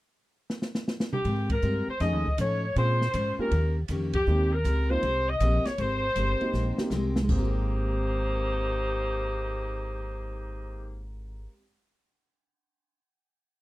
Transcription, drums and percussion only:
0.50 snare
0.62 snare
0.75 snare
0.88 snare
1.00 snare
1.13 mid tom
1.25 kick, ride
1.50 kick, ride
1.62 hi-hat pedal
2.00 kick, snare, ride
2.25 kick
2.38 hi-hat pedal, ride
2.76 kick, ride
3.01 snare
3.13 kick, hi-hat pedal, ride
3.51 kick, ride
3.88 kick, hi-hat pedal, ride
4.13 kick, ride
4.65 hi-hat pedal, ride
5.03 kick, ride
5.40 kick, hi-hat pedal, ride
5.65 snare, ride
5.78 kick, ride
6.16 kick, hi-hat pedal, ride
6.41 ride
6.54 snare
6.78 snare
6.90 snare, hi-hat pedal
7.16 snare
7.29 kick, splash

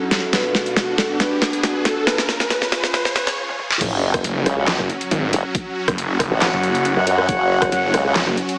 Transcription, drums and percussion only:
0.11 snare, open hi-hat
0.33 snare, closed hi-hat
0.55 snare
0.66 closed hi-hat
0.77 snare, closed hi-hat
0.98 snare, open hi-hat
1.20 snare, closed hi-hat
1.42 snare, closed hi-hat
1.53 closed hi-hat
1.63 snare, closed hi-hat
1.85 snare, open hi-hat
2.07 snare, closed hi-hat
2.18 snare
2.29 snare
2.40 snare, closed hi-hat
2.50 snare, closed hi-hat
2.62 snare
2.72 snare, open hi-hat
2.84 snare
2.94 snare, closed hi-hat
3.05 snare
3.16 snare, closed hi-hat
3.27 snare, closed hi-hat
3.49 high tom
3.59 mid tom
3.71 snare
3.81 kick, closed hi-hat, crash
4.14 kick, cross-stick, closed hi-hat
4.24 closed hi-hat
4.46 cross-stick, open hi-hat
4.68 snare, clap, closed hi-hat
4.79 cross-stick
4.90 closed hi-hat
5.01 closed hi-hat
5.11 closed hi-hat
5.33 open hi-hat
5.55 kick, closed hi-hat
5.88 kick, cross-stick, closed hi-hat
5.98 closed hi-hat
6.20 kick, cross-stick, open hi-hat
6.42 snare, clap, closed hi-hat
6.63 closed hi-hat
6.75 closed hi-hat
6.85 closed hi-hat
7.07 open hi-hat
7.18 cross-stick
7.29 kick, closed hi-hat
7.62 kick, cross-stick, closed hi-hat
7.72 closed hi-hat
7.94 cross-stick, open hi-hat
8.16 snare, clap, closed hi-hat
8.27 cross-stick
8.37 closed hi-hat
8.49 closed hi-hat

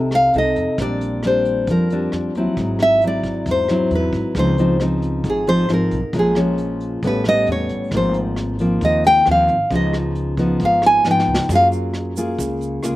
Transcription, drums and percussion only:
0.11 cross-stick, closed hi-hat
0.33 closed hi-hat
0.56 closed hi-hat
0.78 kick, cross-stick, closed hi-hat
1.01 closed hi-hat
1.23 cross-stick, closed hi-hat
1.45 closed hi-hat
1.67 kick, closed hi-hat
1.90 closed hi-hat
2.12 cross-stick, closed hi-hat
2.35 closed hi-hat
2.57 kick, closed hi-hat
2.79 cross-stick, closed hi-hat
3.01 closed hi-hat
3.23 kick, closed hi-hat
3.46 kick, closed hi-hat
3.68 cross-stick, closed hi-hat
3.91 closed hi-hat
4.13 kick, closed hi-hat
4.35 kick, cross-stick, closed hi-hat
4.58 closed hi-hat
4.80 cross-stick, closed hi-hat
5.02 closed hi-hat
5.24 kick, closed hi-hat
5.47 closed hi-hat
5.69 cross-stick, closed hi-hat
5.91 closed hi-hat
6.13 kick, closed hi-hat
6.35 cross-stick, closed hi-hat
6.58 closed hi-hat
6.80 closed hi-hat
7.03 kick, closed hi-hat
7.24 cross-stick, closed hi-hat
7.46 closed hi-hat
7.69 closed hi-hat
7.91 kick, cross-stick, closed hi-hat
8.14 closed hi-hat
8.36 cross-stick, closed hi-hat
8.59 closed hi-hat
8.81 kick, closed hi-hat
9.04 closed hi-hat
9.26 cross-stick, closed hi-hat
9.48 closed hi-hat
9.71 kick, closed hi-hat
9.93 cross-stick, closed hi-hat
10.15 closed hi-hat
10.37 kick, closed hi-hat
10.60 kick, closed hi-hat
10.82 cross-stick, closed hi-hat
11.04 snare
11.19 snare
11.34 snare
11.49 kick, cross-stick, closed hi-hat, shaker
11.71 closed hi-hat, shaker
11.94 cross-stick, closed hi-hat
12.16 closed hi-hat, shaker
12.38 kick, closed hi-hat, shaker
12.61 closed hi-hat, shaker
12.83 cross-stick, closed hi-hat, shaker

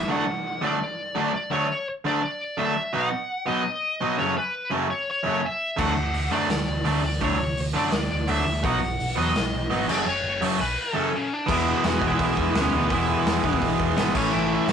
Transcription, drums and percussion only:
5.79 kick, crash
6.14 open hi-hat
6.50 snare, open hi-hat
6.85 open hi-hat
7.21 kick, open hi-hat
7.57 open hi-hat
7.92 snare, open hi-hat
8.28 open hi-hat
8.64 kick, open hi-hat
9.00 open hi-hat
9.35 snare, open hi-hat
9.71 open hi-hat
9.89 crash
10.42 open hi-hat
11.48 kick, crash
11.84 snare, open hi-hat
12.02 kick
12.11 kick
12.19 kick, open hi-hat
12.37 kick
12.55 snare, open hi-hat
12.90 kick, open hi-hat
13.26 snare, open hi-hat
13.44 kick
13.53 kick
13.62 kick, open hi-hat
13.80 kick
13.97 snare, open hi-hat
14.15 kick, crash
14.68 snare, open hi-hat

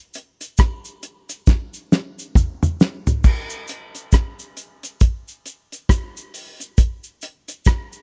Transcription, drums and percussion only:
0.14 closed hi-hat, cabasa
0.41 closed hi-hat, cabasa
0.58 kick, cross-stick, closed hi-hat, cabasa
0.85 cabasa
1.03 closed hi-hat, cabasa
1.29 closed hi-hat, cabasa
1.47 kick, snare, cabasa
1.74 cabasa
1.92 snare, cabasa
2.19 cabasa
2.35 kick, mid tom, cabasa
2.63 mid tom, cabasa
2.80 snare, cabasa
3.07 floor tom, cabasa
3.24 kick, crash, cabasa
3.50 cabasa
3.68 closed hi-hat, cabasa
3.95 closed hi-hat, cabasa
4.12 kick, cross-stick, closed hi-hat, cabasa
4.39 cabasa
4.57 closed hi-hat, cabasa
4.83 closed hi-hat, cabasa
5.01 kick, closed hi-hat, cabasa
5.28 cabasa
5.46 closed hi-hat, cabasa
5.72 closed hi-hat, cabasa
5.89 kick, cross-stick, closed hi-hat, cabasa
6.17 cabasa
6.34 open hi-hat, cabasa
6.60 closed hi-hat, cabasa
6.78 kick, closed hi-hat, cabasa
7.04 cabasa
7.22 closed hi-hat, cabasa
7.48 closed hi-hat, cabasa
7.65 kick, cross-stick, closed hi-hat, cabasa
7.93 cabasa

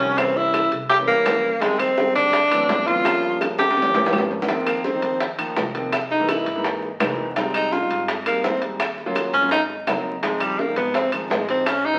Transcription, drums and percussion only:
0.00 high bongo, high timbale
0.18 high bongo, high timbale, claves
0.36 high bongo
0.54 high bongo, high timbale, claves
0.72 high bongo, high timbale
0.90 high bongo
1.08 high bongo
1.26 high bongo, low bongo, high timbale, low timbale, claves
1.61 high bongo, high timbale
1.79 high bongo, high timbale, claves
1.98 high bongo
2.16 high bongo, high timbale
2.33 high bongo, high timbale
2.51 high timbale, claves
2.69 high bongo, low bongo, low timbale
2.87 high bongo, high timbale
3.05 high bongo, high timbale, claves
3.23 high bongo
3.41 high bongo, high timbale, claves
3.59 high bongo, high timbale
3.71 high bongo
3.77 high timbale
3.82 low bongo
3.94 low bongo, low timbale
4.06 low bongo
4.13 low timbale, claves
4.18 low bongo
4.31 low timbale
4.42 low bongo
4.48 high bongo, high timbale
4.67 high bongo, high timbale, claves
4.84 high bongo
5.02 high bongo, high timbale
5.20 high bongo, high timbale
5.39 high timbale, claves
5.56 high bongo, low bongo, low timbale
5.75 high bongo, high timbale
5.92 high bongo, high timbale, claves
6.11 high bongo
6.29 high bongo, high timbale, claves
6.46 high bongo, high timbale
6.64 high bongo
6.82 high bongo
7.00 high bongo, low bongo, high timbale, low timbale, claves
7.36 high bongo, high timbale
7.54 high bongo, high timbale, claves
7.72 high bongo
7.90 high bongo, high timbale
8.08 high bongo, high timbale
8.26 high timbale, claves
8.44 high bongo, low bongo
8.62 high bongo, high timbale
8.80 high bongo, high timbale, claves
8.98 high bongo
9.15 high bongo, high timbale, claves
9.34 high bongo, high timbale
9.51 high bongo
9.70 high bongo
9.87 high bongo, low bongo, high timbale, claves
10.23 high bongo, high timbale
10.40 high bongo, high timbale, claves
10.59 high bongo
10.76 high bongo, high timbale
10.94 high bongo, high timbale
11.12 high timbale, claves
11.30 high bongo, low bongo, low timbale
11.49 high bongo, high timbale
11.66 high bongo, high timbale, claves
11.85 high bongo

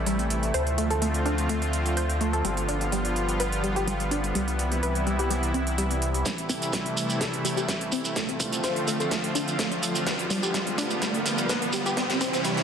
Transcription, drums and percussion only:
0.06 closed hi-hat
0.19 closed hi-hat
0.30 closed hi-hat
0.43 closed hi-hat
0.54 closed hi-hat
0.67 closed hi-hat
0.78 closed hi-hat
0.91 closed hi-hat
1.02 closed hi-hat
1.14 closed hi-hat
1.26 closed hi-hat
1.38 closed hi-hat
1.49 closed hi-hat
1.62 closed hi-hat
1.73 closed hi-hat
1.86 closed hi-hat
1.97 closed hi-hat
2.10 closed hi-hat
2.21 closed hi-hat
2.33 closed hi-hat
2.45 closed hi-hat
2.57 closed hi-hat
2.69 closed hi-hat
2.81 closed hi-hat
2.92 closed hi-hat
3.05 closed hi-hat
3.16 closed hi-hat
3.29 closed hi-hat
3.40 closed hi-hat
3.52 closed hi-hat
3.64 closed hi-hat
3.76 closed hi-hat
3.88 closed hi-hat
4.00 closed hi-hat
4.11 closed hi-hat
4.24 closed hi-hat
4.35 closed hi-hat
4.48 closed hi-hat
4.59 closed hi-hat
4.72 closed hi-hat
4.83 closed hi-hat
4.95 closed hi-hat
5.07 closed hi-hat
5.19 closed hi-hat
5.30 closed hi-hat
5.43 closed hi-hat
5.54 closed hi-hat
5.67 closed hi-hat
5.78 closed hi-hat
5.91 closed hi-hat
6.02 closed hi-hat
6.14 closed hi-hat
6.25 kick, snare, closed hi-hat, shekere
6.38 closed hi-hat
6.49 kick, open hi-hat, shekere
6.62 closed hi-hat, shekere
6.73 kick, snare, closed hi-hat, shekere
6.86 closed hi-hat
6.97 open hi-hat, shekere
7.09 closed hi-hat, shekere
7.21 kick, snare, closed hi-hat, shekere
7.34 closed hi-hat
7.45 open hi-hat, shekere
7.57 closed hi-hat, shekere
7.69 kick, snare, closed hi-hat, shekere
7.81 closed hi-hat
7.92 open hi-hat, shekere
8.05 closed hi-hat, shekere
8.16 kick, snare, closed hi-hat, shekere
8.29 closed hi-hat
8.40 kick, open hi-hat, shekere
8.53 closed hi-hat, shekere
8.64 kick, snare, closed hi-hat, shekere
8.76 closed hi-hat
8.88 open hi-hat, shekere
9.00 closed hi-hat, shekere
9.11 kick, snare, closed hi-hat, shekere
9.24 closed hi-hat
9.35 open hi-hat, shekere
9.48 closed hi-hat, shekere
9.59 kick, snare, closed hi-hat, shekere
9.72 closed hi-hat
9.83 open hi-hat, shekere
9.95 closed hi-hat, shekere
10.07 kick, snare, closed hi-hat, shekere
10.19 closed hi-hat
10.30 kick, snare, open hi-hat, shekere
10.43 closed hi-hat, shekere
10.54 kick, snare, closed hi-hat, shekere
10.67 closed hi-hat
10.78 snare, open hi-hat, shekere
10.90 closed hi-hat, shekere
11.02 kick, snare, closed hi-hat, shekere
11.14 closed hi-hat
11.26 snare, open hi-hat, shekere
11.38 closed hi-hat, shekere
11.49 kick, snare, closed hi-hat, shekere
11.62 closed hi-hat
11.73 snare, open hi-hat, shekere
11.86 closed hi-hat, shekere
11.97 kick, snare, closed hi-hat, shekere
12.10 snare, closed hi-hat
12.21 kick, snare, open hi-hat, shekere
12.33 snare, closed hi-hat, shekere
12.44 kick, snare, closed hi-hat, shekere
12.57 snare, closed hi-hat

